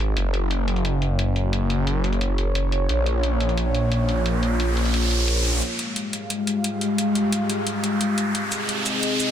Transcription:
0.00 0.15 G#1 medium
0.00 0.14 C4 medium
0.00 0.14 G#4 medium
0.00 0.14 D#5 medium
0.17 2.88 F#1 medium
0.17 2.87 A#3 medium
0.17 2.87 F#4 medium
0.17 5.58 C#5 medium
0.17 closed hi-hat medium
0.34 closed hi-hat medium
0.51 closed hi-hat medium
0.68 closed hi-hat medium
0.76 closed hi-hat soft
0.85 closed hi-hat medium
1.02 closed hi-hat medium
1.19 closed hi-hat medium
1.36 closed hi-hat medium
1.53 closed hi-hat medium
1.70 closed hi-hat medium
1.87 closed hi-hat medium
2.04 closed hi-hat medium
2.13 closed hi-hat soft
2.21 closed hi-hat medium
2.38 closed hi-hat medium
2.55 closed hi-hat medium
2.72 closed hi-hat medium
2.89 5.60 A#1 medium
2.89 5.59 A#3 medium
2.89 5.59 F4 medium
2.89 closed hi-hat medium
2.89 riser medium
3.06 closed hi-hat medium
3.23 closed hi-hat medium
3.40 closed hi-hat medium
3.49 closed hi-hat soft
3.57 closed hi-hat medium
3.75 closed hi-hat medium
3.92 closed hi-hat medium
4.09 closed hi-hat medium
4.26 closed hi-hat medium
4.43 closed hi-hat medium
4.60 closed hi-hat loud
4.77 closed hi-hat medium
4.85 closed hi-hat soft
4.94 closed hi-hat medium
5.02 closed hi-hat soft
5.11 closed hi-hat medium
5.28 closed hi-hat loud
5.36 closed hi-hat soft
5.45 closed hi-hat medium
5.54 closed hi-hat soft
5.62 8.32 G#3 medium
5.62 8.32 G4 medium
5.62 8.32 F5 medium
5.62 closed hi-hat medium
5.62 riser medium
5.79 closed hi-hat medium
5.96 closed hi-hat loud
6.13 closed hi-hat medium
6.30 closed hi-hat medium
6.47 closed hi-hat medium
6.64 closed hi-hat medium
6.81 closed hi-hat medium
6.98 closed hi-hat medium
7.15 closed hi-hat medium
7.32 closed hi-hat medium
7.50 closed hi-hat medium
7.67 closed hi-hat medium
7.84 closed hi-hat medium
8.01 closed hi-hat medium
8.18 closed hi-hat medium
8.35 9.31 C4 medium
8.35 9.31 G#4 medium
8.35 9.31 D#5 medium
8.35 closed hi-hat medium
8.52 closed hi-hat medium
8.52 shaker medium
8.69 closed hi-hat medium
8.86 closed hi-hat medium
8.86 shaker medium
9.03 closed hi-hat medium
9.20 closed hi-hat medium
9.20 shaker medium

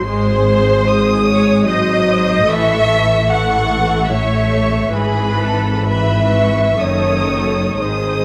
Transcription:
0.07 2.44 G#1 medium
0.07 2.44 G#2 medium
0.07 0.44 G#3 medium
0.07 0.85 G#4 medium
0.07 1.23 C5 medium
0.07 0.85 C6 medium
0.45 1.65 G#3 medium
0.86 1.66 G#4 medium
0.86 1.67 D#6 medium
1.27 1.67 C#5 medium
1.66 2.48 F#3 medium
1.66 2.05 C5 medium
1.66 2.47 D#5 medium
1.66 2.47 D#6 medium
2.07 2.47 C5 medium
2.47 4.90 A1 medium
2.47 4.89 A2 medium
2.47 2.87 E3 medium
2.47 3.28 A4 medium
2.47 3.30 E5 loud
2.47 3.29 C#6 medium
2.89 4.08 E3 medium
3.29 4.09 A4 medium
3.29 4.11 F#5 medium
3.29 4.09 C#6 medium
4.11 4.94 A3 medium
4.11 4.92 C#5 medium
4.11 4.94 E5 medium
4.11 4.92 C#6 medium
4.94 6.77 G#1 medium
4.94 6.77 G#2 medium
4.94 5.85 E3 medium
4.94 5.41 G#4 medium
4.94 5.85 B4 medium
4.94 5.86 B5 medium
5.41 5.89 A4 medium
5.88 6.79 E3 soft
5.88 6.79 B4 medium
5.88 6.79 E5 medium
5.88 6.34 B5 medium
6.36 6.80 C#6 soft
6.79 7.80 F#1 soft
6.79 7.79 F#2 medium
6.79 7.76 D#3 medium
6.79 7.76 A4 soft
6.79 7.79 C#5 medium
6.79 7.78 D#6 soft
7.77 8.25 G#1 medium
7.77 8.25 G#2 medium
7.77 8.25 D#3 medium
7.77 8.25 G#4 soft
7.77 8.25 C5 medium
7.77 8.25 D#6 medium

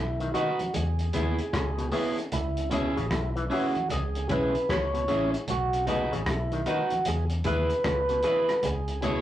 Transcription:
0.00 0.33 B1 medium
0.00 0.32 E4 medium
0.20 0.29 D#3 medium
0.20 closed hi-hat soft
0.34 0.50 D#3 medium
0.34 0.59 D#4 medium
0.34 0.59 F#4 medium
0.34 0.75 F#4 medium
0.34 0.59 F#4 medium
0.34 0.59 B4 medium
0.34 0.60 B4 loud
0.34 0.60 D#5 medium
0.34 closed hi-hat medium
0.60 closed hi-hat medium
0.60 high conga medium
0.74 1.13 E2 medium
0.74 1.89 G#4 medium
0.74 closed hi-hat loud
0.74 low conga medium
0.99 closed hi-hat medium
1.13 1.38 D#2 medium
1.13 1.38 B3 medium
1.13 1.38 E4 medium
1.13 1.38 G#4 loud
1.13 1.39 G#4 medium
1.13 1.39 B4 medium
1.13 1.39 E5 loud
1.13 closed hi-hat medium
1.13 low conga medium
1.39 closed hi-hat soft
1.53 1.91 C#2 medium
1.53 1.69 C#3 medium
1.53 kick loud
1.53 cross-stick loud
1.53 closed hi-hat medium
1.78 1.87 B2 medium
1.78 closed hi-hat soft
1.92 2.08 C#3 medium
1.92 2.16 B3 medium
1.92 2.17 E4 medium
1.92 2.17 G#4 medium
1.92 2.17 B4 medium
1.92 2.18 E5 medium
1.92 open hi-hat medium
2.18 closed hi-hat medium
2.32 2.94 C#2 loud
2.32 2.70 E4 medium
2.32 closed hi-hat medium
2.32 low conga medium
2.57 closed hi-hat medium
2.71 2.87 B2 medium
2.71 2.95 C#4 medium
2.71 2.96 E4 medium
2.71 2.96 G#4 medium
2.71 3.13 G#4 medium
2.71 2.97 C#5 medium
2.71 2.97 E5 loud
2.71 closed hi-hat medium
2.71 low conga medium
2.97 3.11 A1 medium
2.97 3.06 C#3 medium
2.97 closed hi-hat soft
3.11 3.49 B1 medium
3.11 3.30 E4 medium
3.11 kick loud
3.11 cross-stick loud
3.11 closed hi-hat medium
3.36 3.45 E3 medium
3.36 closed hi-hat soft
3.50 3.66 E3 medium
3.50 3.74 C#4 medium
3.50 3.75 E4 medium
3.50 3.88 F#4 medium
3.50 3.75 G#4 medium
3.50 3.75 C#5 medium
3.50 3.76 E5 medium
3.50 open hi-hat soft
3.75 closed hi-hat medium
3.75 high conga medium
3.90 4.29 C#2 loud
3.90 4.28 G#4 loud
3.90 closed hi-hat loud
3.90 low conga medium
4.15 closed hi-hat medium
4.29 4.54 B1 medium
4.29 4.53 C#4 medium
4.29 4.54 E4 medium
4.29 4.54 G#4 medium
4.29 4.71 B4 loud
4.29 4.54 C#5 medium
4.29 4.54 E5 loud
4.29 kick medium
4.29 closed hi-hat medium
4.29 low conga medium
4.55 closed hi-hat medium
4.69 5.07 C#2 medium
4.69 4.84 C#3 medium
4.69 5.31 C#5 loud
4.69 kick loud
4.69 cross-stick loud
4.69 closed hi-hat medium
4.94 5.03 B2 medium
4.94 closed hi-hat medium
5.08 5.33 A1 medium
5.08 5.24 C#3 medium
5.08 5.32 C#4 medium
5.08 5.33 E4 medium
5.08 5.33 G#4 medium
5.08 5.32 G#4 loud
5.08 5.33 C#5 medium
5.08 5.33 E5 loud
5.08 closed hi-hat medium
5.33 muted clean electric guitar stroke soft
5.33 closed hi-hat medium
5.47 6.10 B1 medium
5.47 5.86 F#4 medium
5.47 closed hi-hat loud
5.47 low conga medium
5.73 closed hi-hat medium
5.87 6.03 B2 medium
5.87 6.11 D#4 medium
5.87 6.12 F#4 medium
5.87 6.12 F#4 loud
5.87 6.29 G#4 medium
5.87 6.12 B4 medium
5.87 6.12 D#5 medium
5.87 closed hi-hat medium
5.87 low conga medium
6.12 6.27 A1 medium
6.12 6.21 C#3 medium
6.12 closed hi-hat soft
6.26 6.64 B1 medium
6.26 6.68 E4 medium
6.26 kick loud
6.26 cross-stick loud
6.26 closed hi-hat medium
6.52 6.61 D#3 medium
6.52 closed hi-hat soft
6.66 6.82 D#3 medium
6.66 6.90 D#4 medium
6.66 6.91 F#4 medium
6.66 7.08 F#4 medium
6.66 6.91 B4 medium
6.66 6.91 D#5 medium
6.66 closed hi-hat medium
6.90 closed hi-hat medium
6.90 high conga medium
7.05 7.44 E2 loud
7.05 7.25 G#4 medium
7.05 closed hi-hat loud
7.05 low conga medium
7.30 closed hi-hat medium
7.44 7.70 D#2 medium
7.44 7.69 E4 medium
7.44 7.70 G#4 medium
7.44 7.70 B4 medium
7.44 8.68 B4 loud
7.44 7.70 E5 loud
7.44 kick medium
7.44 closed hi-hat medium
7.44 low conga medium
7.70 closed hi-hat medium
7.84 8.22 C#2 medium
7.84 8.00 C#3 medium
7.84 kick loud
7.84 cross-stick loud
7.84 closed hi-hat medium
8.09 8.18 B2 medium
8.09 closed hi-hat soft
8.23 8.39 C#3 medium
8.23 8.48 E4 medium
8.23 8.48 G#4 medium
8.23 8.49 G#4 medium
8.23 8.49 B4 medium
8.23 8.49 E5 loud
8.23 closed hi-hat medium
8.49 cross-stick medium
8.49 closed hi-hat medium
8.63 9.21 C#2 loud
8.63 9.01 G#4 medium
8.63 closed hi-hat medium
8.63 low conga medium
8.88 closed hi-hat medium
9.02 9.18 B2 medium
9.02 9.21 E4 medium
9.02 9.21 G#4 medium
9.02 9.21 G#4 loud
9.02 9.21 G#4 medium
9.02 9.21 C#5 medium
9.02 9.21 C#5 loud
9.02 9.21 E5 loud
9.02 closed hi-hat medium
9.02 low conga medium

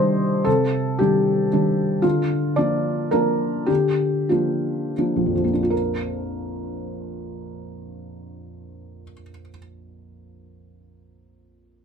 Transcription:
0.00 0.46 C3 soft
0.00 0.49 D#3 soft
0.00 0.48 G3 soft
0.00 0.48 D4 soft
0.00 0.48 G4 medium
0.00 0.45 C5 medium
0.00 0.48 D#5 medium
0.44 0.98 C3 soft
0.44 0.98 A4 medium
0.99 1.48 D#3 soft
0.99 1.48 G3 soft
0.99 1.48 D4 soft
0.99 2.03 G4 medium
1.52 2.00 D#3 soft
1.52 2.00 G3 soft
1.52 2.01 D4 soft
2.02 2.56 D3 soft
2.02 2.56 F4 medium
2.56 3.08 F3 soft
2.56 3.09 A#3 soft
2.56 3.09 D4 soft
2.56 3.12 D5 medium
3.11 3.65 F3 soft
3.11 3.65 A#3 soft
3.11 3.65 D4 soft
3.11 3.69 A#4 medium
3.66 4.27 D3 soft
3.66 4.28 G4 medium
4.29 4.93 F3 soft
4.29 4.93 A#3 soft
4.29 4.93 D4 soft
4.29 5.61 F4 soft
4.98 5.34 F3 soft
4.98 5.43 A#3 soft
4.98 5.52 D4 soft
5.16 9.03 A#1 soft
5.26 9.13 F2 soft
5.35 9.22 F3 soft
5.44 9.31 A#3 soft
5.53 9.40 D4 soft
5.63 9.49 F4 soft
5.70 9.57 A#4 soft

